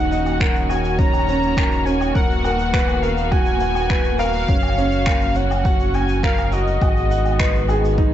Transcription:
Already playing: D#1 D#3 A#3 C#4 D#4 F#4 F#5
0.11 D#5, shaker
0.26 low woodblock, shaker
0.40 A#4, finger snap, kick, shaker
0.55 shaker
0.69 F#4 G#5, low woodblock, shaker
0.84 shaker
0.98 C#4 A#5, kick, shaker
1.13 low woodblock, shaker
1.28 C#4, shaker
1.43 shaker
1.57 A#4, finger snap, kick, low woodblock, shaker
1.72 shaker
1.86 C#4 G#5, shaker
2.01 low woodblock, shaker
2.15 D#1 B3 A#4 F#5, kick, shaker
2.31 shaker
2.44 A#4, low woodblock, shaker
2.59 shaker
2.73 B4, finger snap, kick, shaker
2.88 low woodblock, shaker
3.02 A#4 F5, shaker
3.17 shaker
3.31 F#4 G#5, kick, low woodblock, shaker
3.46 shaker
3.60 F#5, shaker
3.75 low woodblock, shaker
3.90 B4, finger snap, kick, shaker
4.04 shaker
4.19 A#4 F5, low woodblock, shaker
4.33 shaker
4.48 F#1 C#4, kick, shaker
4.62 low woodblock, shaker
4.78 C#4, shaker
4.91 shaker
5.06 A#4, finger snap, kick, low woodblock, shaker
5.21 shaker
5.35 C#4 F#5, shaker
5.51 low woodblock, shaker
5.65 F#4, kick, shaker
5.80 shaker
5.94 F#4 G#5, low woodblock, shaker
6.09 shaker
6.23 A#4 F5, finger snap, kick, shaker
6.38 low woodblock, shaker
6.52 F#4 D#5, shaker
6.67 shaker
6.81 G#1 D#3 G#3 B3 F#4, kick, low woodblock, shaker
6.97 shaker
7.11 F#5, shaker
7.25 low woodblock, shaker
7.40 B4, finger snap, kick, shaker
7.55 shaker
7.68 G#4, low woodblock, shaker
7.84 shaker
7.98 D#4, kick, shaker

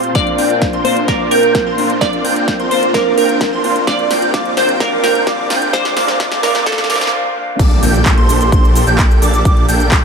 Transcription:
Already playing: A#2 C4 F4 G4 C5 A5 C6
0.04 closed hi-hat
0.14 A#3 C4 D4 F4 A#4 C5 D5 D6, kick, snare, closed hi-hat, riser
0.27 closed hi-hat
0.38 C4 D4 F4 A#4 G5 G6, open hi-hat
0.50 closed hi-hat
0.62 kick, snare, closed hi-hat
0.73 C4 D4 F4 A#4 C5 C6, closed hi-hat
0.84 A#3 C4 D4 F4 C5, open hi-hat
0.97 closed hi-hat
1.07 A#3 C4 D4 F4 A#4 D5 D6, kick, snare, closed hi-hat
1.31 C4 D4 F4 A#4 G5 G6, open hi-hat
1.43 closed hi-hat
1.55 kick, snare, closed hi-hat
1.66 C4 D4 F4 A#4 C5 C6
1.77 A#3 C4 D4 F4, open hi-hat
1.90 closed hi-hat
2.00 A#3 C4 D4 F4 A#4 D5 D6, kick, snare, closed hi-hat
2.13 closed hi-hat
2.25 C4 D4 F4 A#4 G5 G6, open hi-hat
2.36 closed hi-hat
2.48 kick, snare, closed hi-hat
2.60 C4 D4 F4 A#4 C5 C6, closed hi-hat
2.70 A#3 C4 D4 F4 C5, open hi-hat
2.83 closed hi-hat
2.93 A#3 C4 D4 F4 A#4 D5 D6, kick, snare, closed hi-hat
3.18 C4 D4 F4 A#4 G5 G6, open hi-hat
3.29 closed hi-hat
3.41 kick, snare, closed hi-hat
3.52 C4 D4 F4 A#4 C5 C6
3.63 A#3 C4 D4 F4, open hi-hat
3.76 closed hi-hat
3.86 A#2 D#3 A#3 C4 D4 F4 G4 A#4 D5 D6, kick, snare, closed hi-hat
3.99 closed hi-hat
4.11 C4 D4 F4 A#4 G5 G6, snare, open hi-hat
4.22 closed hi-hat
4.33 A#3 C4 D4 F4 D5 D6, kick, snare, closed hi-hat
4.46 closed hi-hat
4.57 C4 D4 F4 A#4 C5 G5 G6, snare, open hi-hat
4.69 closed hi-hat
4.79 A#3 C4 D4 F4 A#4 D5 D6, kick, snare, closed hi-hat
5.03 C4 D4 F4 A#4 G5 G6, snare, open hi-hat
5.15 closed hi-hat
5.26 A#3 C4 D4 F4 A#4 D5 D6, kick, snare, closed hi-hat
5.50 C4 D4 F4 A#4 G5 G6, snare, open hi-hat
5.62 closed hi-hat
5.72 A#3 C4 D4 F4 C5 D5 D6, kick, snare, closed hi-hat
5.85 snare, closed hi-hat
5.96 A#3 C4 D4 F4 A#4 D5 D6, snare, open hi-hat
6.08 snare, closed hi-hat
6.19 A#3 C4 D4 F4 A#4 D5 D6, kick, snare, closed hi-hat
6.32 snare, closed hi-hat
6.42 A#3 C4 D4 F4 A#4 D5 D6, snare, open hi-hat
6.55 snare, closed hi-hat
6.65 A#3 C4 D4 F4 A4 D5 D6, kick, snare, closed hi-hat
6.72 snare
6.78 snare, closed hi-hat
6.84 snare
6.88 A#3 C4 D4 F4 A#4 D5 D6, snare, open hi-hat
6.96 snare
7.01 snare, closed hi-hat
7.07 snare
7.12 A#3 C4 D4 F4
7.35 A#3 C4 D4 F4
7.59 A#1 A#3 D4 G4 A4 D5 D6, kick, closed hi-hat, crash, impact, cabasa
7.71 closed hi-hat
7.82 A#1 A#3 D4 G4 A4 G5 G6, open hi-hat, cabasa
7.94 closed hi-hat, cabasa
8.06 kick, clap, closed hi-hat, cabasa
8.17 A#1 A#3 D4 G4 A4 C5 C6, closed hi-hat
8.29 open hi-hat, cabasa
8.41 closed hi-hat, cabasa
8.52 A#1 A#3 D4 G4 A4 C5 C6, kick, closed hi-hat, cabasa
8.65 cabasa
8.76 open hi-hat, cabasa
8.87 A#1 A#3 D4 G4 A4 G5 G6, closed hi-hat, cabasa
8.98 kick, clap, closed hi-hat, cabasa
9.11 cabasa
9.22 A#1 A#3 D4 G4 A4 D5 D6, open hi-hat, cabasa
9.34 closed hi-hat, cabasa
9.45 A#1 A#3 D4 F4 G4 A4 D5 D6, kick, closed hi-hat, cabasa
9.57 closed hi-hat
9.69 A#1 A#3 D4 G4 A4 G5 G6, open hi-hat, cabasa
9.80 closed hi-hat, cabasa
9.91 kick, clap, closed hi-hat, cabasa

